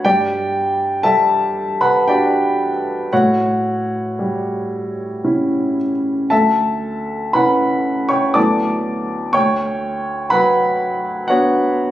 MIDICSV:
0, 0, Header, 1, 2, 480
1, 0, Start_track
1, 0, Key_signature, 2, "major"
1, 0, Tempo, 985222
1, 22, Time_signature, 3, 2, 24, 8
1, 503, Tempo, 1039861
1, 1463, Tempo, 1067616
1, 2903, Tempo, 1025641
1, 3383, Tempo, 998336
1, 5580, End_track
2, 0, Start_track
2, 0, Title_t, "Grand piano"
2, 0, Program_c, 0, 0
2, 0, Control_c, 0, 64, 127
2, 22, Note_on_c, 0, 79, 88
2, 26, Note_on_c, 0, 43, 50
2, 27, Note_on_c, 0, 74, 62
2, 28, Note_on_c, 0, 67, 64
2, 29, Control_c, 0, 64, 0
2, 110, Control_c, 0, 64, 127
2, 486, Note_off_c, 0, 74, 0
2, 487, Note_off_c, 0, 67, 0
2, 503, Note_off_c, 0, 79, 0
2, 503, Note_on_c, 0, 81, 86
2, 506, Note_on_c, 0, 69, 61
2, 508, Note_on_c, 0, 55, 45
2, 508, Note_on_c, 0, 76, 60
2, 845, Note_off_c, 0, 69, 0
2, 846, Note_off_c, 0, 76, 0
2, 861, Note_on_c, 0, 83, 74
2, 862, Note_off_c, 0, 81, 0
2, 862, Note_on_c, 0, 71, 59
2, 865, Note_on_c, 0, 78, 57
2, 974, Note_off_c, 0, 71, 0
2, 975, Note_off_c, 0, 78, 0
2, 982, Note_off_c, 0, 83, 0
2, 985, Note_on_c, 0, 79, 76
2, 989, Note_on_c, 0, 67, 53
2, 990, Note_on_c, 0, 62, 36
2, 990, Note_on_c, 0, 66, 41
2, 991, Note_on_c, 0, 74, 54
2, 1272, Note_off_c, 0, 55, 0
2, 1447, Note_off_c, 0, 43, 0
2, 1448, Note_off_c, 0, 67, 0
2, 1449, Note_off_c, 0, 62, 0
2, 1449, Note_off_c, 0, 66, 0
2, 1449, Note_off_c, 0, 74, 0
2, 1464, Note_off_c, 0, 79, 0
2, 1470, Note_on_c, 0, 78, 64
2, 1471, Control_c, 0, 64, 0
2, 1471, Note_on_c, 0, 73, 51
2, 1472, Note_on_c, 0, 45, 50
2, 1472, Note_on_c, 0, 66, 50
2, 1553, Control_c, 0, 64, 127
2, 1948, Note_on_c, 0, 55, 37
2, 2422, Note_on_c, 0, 61, 33
2, 2422, Note_on_c, 0, 64, 32
2, 2651, Note_off_c, 0, 73, 0
2, 2652, Note_off_c, 0, 66, 0
2, 2669, Note_off_c, 0, 78, 0
2, 2715, Note_off_c, 0, 55, 0
2, 2883, Note_off_c, 0, 61, 0
2, 2883, Note_off_c, 0, 64, 0
2, 2889, Note_off_c, 0, 45, 0
2, 2897, Note_on_c, 0, 81, 73
2, 2902, Note_on_c, 0, 76, 55
2, 2904, Note_on_c, 0, 38, 46
2, 2904, Note_on_c, 0, 69, 58
2, 2910, Control_c, 0, 64, 0
2, 2975, Control_c, 0, 64, 127
2, 3364, Note_off_c, 0, 76, 0
2, 3365, Note_off_c, 0, 69, 0
2, 3380, Note_off_c, 0, 81, 0
2, 3380, Note_on_c, 0, 83, 74
2, 3385, Note_on_c, 0, 71, 56
2, 3386, Note_on_c, 0, 64, 37
2, 3387, Note_on_c, 0, 61, 37
2, 3390, Note_on_c, 0, 78, 57
2, 3732, Note_off_c, 0, 71, 0
2, 3735, Note_off_c, 0, 78, 0
2, 3741, Note_on_c, 0, 85, 71
2, 3746, Note_on_c, 0, 73, 49
2, 3748, Note_on_c, 0, 79, 49
2, 3749, Note_off_c, 0, 83, 0
2, 3854, Note_off_c, 0, 38, 0
2, 3855, Note_off_c, 0, 61, 0
2, 3855, Note_off_c, 0, 64, 0
2, 3862, Note_off_c, 0, 73, 0
2, 3863, Note_off_c, 0, 79, 0
2, 3863, Note_on_c, 0, 86, 74
2, 3868, Note_off_c, 0, 85, 0
2, 3868, Note_on_c, 0, 38, 46
2, 3868, Note_on_c, 0, 54, 33
2, 3868, Note_on_c, 0, 74, 59
2, 3868, Note_on_c, 0, 81, 56
2, 3871, Note_on_c, 0, 59, 33
2, 3871, Note_on_c, 0, 64, 33
2, 3872, Note_on_c, 0, 57, 33
2, 3882, Control_c, 0, 64, 0
2, 3971, Control_c, 0, 64, 127
2, 4327, Note_off_c, 0, 54, 0
2, 4327, Note_off_c, 0, 74, 0
2, 4327, Note_off_c, 0, 81, 0
2, 4329, Note_off_c, 0, 57, 0
2, 4329, Note_off_c, 0, 59, 0
2, 4332, Note_off_c, 0, 38, 0
2, 4333, Note_off_c, 0, 64, 0
2, 4339, Note_on_c, 0, 85, 83
2, 4344, Note_off_c, 0, 86, 0
2, 4345, Note_on_c, 0, 38, 52
2, 4345, Note_on_c, 0, 73, 64
2, 4345, Note_on_c, 0, 79, 65
2, 4356, Control_c, 0, 64, 0
2, 4435, Control_c, 0, 64, 127
2, 4799, Note_off_c, 0, 73, 0
2, 4799, Note_off_c, 0, 79, 0
2, 4807, Note_on_c, 0, 83, 82
2, 4810, Note_on_c, 0, 78, 61
2, 4814, Note_on_c, 0, 54, 44
2, 4815, Note_off_c, 0, 85, 0
2, 4815, Note_on_c, 0, 71, 66
2, 5267, Note_off_c, 0, 78, 0
2, 5269, Note_off_c, 0, 71, 0
2, 5276, Note_on_c, 0, 78, 72
2, 5284, Note_on_c, 0, 66, 59
2, 5285, Note_off_c, 0, 83, 0
2, 5285, Note_on_c, 0, 59, 40
2, 5287, Note_on_c, 0, 73, 53
2, 5288, Note_on_c, 0, 62, 43
2, 5580, Note_off_c, 0, 38, 0
2, 5580, Note_off_c, 0, 54, 0
2, 5580, Note_off_c, 0, 59, 0
2, 5580, Note_off_c, 0, 62, 0
2, 5580, Note_off_c, 0, 66, 0
2, 5580, Note_off_c, 0, 73, 0
2, 5580, Note_off_c, 0, 78, 0
2, 5580, End_track
0, 0, End_of_file